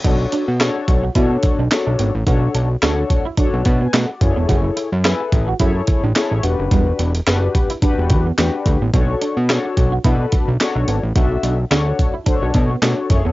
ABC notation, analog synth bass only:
X:1
M:4/4
L:1/16
Q:"Swing 16ths" 1/4=108
K:Bdor
V:1 name="Analog synth bass" clef=bass
B,,,2 z B,,2 z B,,,2 B,,2 z B,,, z B,,, G,,, A,,, | B,,,2 B,,,2 D,,2 z3 B,,, B,,2 B,, z F,,, E,,, | F,,,2 z F,,2 z A,,,2 F,,2 z A,,, z A,,, E,,, F,,, | E,,,2 E,,,2 F,,,2 z3 E,,, E,,2 E,, z D,, A,,, |
B,,,2 z B,,2 z B,,,2 B,,2 z B,,, z B,,, G,,, A,,, | B,,,2 B,,,2 D,,2 z3 B,,, B,,2 B,, z F,,, E,,, |]